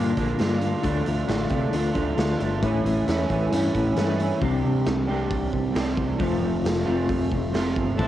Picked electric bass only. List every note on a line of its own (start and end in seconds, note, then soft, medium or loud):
0.00 0.12 G2 medium
0.17 0.34 A#1 medium
0.40 0.73 G2 medium
0.84 1.01 D2 medium
1.07 1.23 D2 medium
1.28 1.45 A1 medium
1.51 1.68 C3 medium
1.73 1.90 D2 medium
1.96 2.12 D2 medium
2.18 2.35 D2 medium
2.41 2.63 G1 medium
2.63 2.79 A1 medium
2.84 3.01 A1 medium
3.08 3.24 E2 medium
3.31 3.47 A1 medium
3.52 3.69 G2 medium
3.75 3.91 A1 medium
3.98 4.31 G2 medium
4.41 4.63 C2 medium
4.65 4.86 C2 medium
4.86 5.08 C2 medium
5.09 5.30 C2 medium
5.31 5.52 C2 medium
5.53 5.75 C2 medium
5.75 5.97 C2 medium
5.98 6.19 C2 medium
6.20 6.42 F1 medium
6.42 6.64 F1 medium
6.64 6.86 F1 medium
6.87 7.09 F1 medium
7.09 7.31 F1 medium
7.32 7.53 F1 medium
7.54 7.76 F1 medium
7.76 7.98 G1 medium
7.99 8.08 A1 medium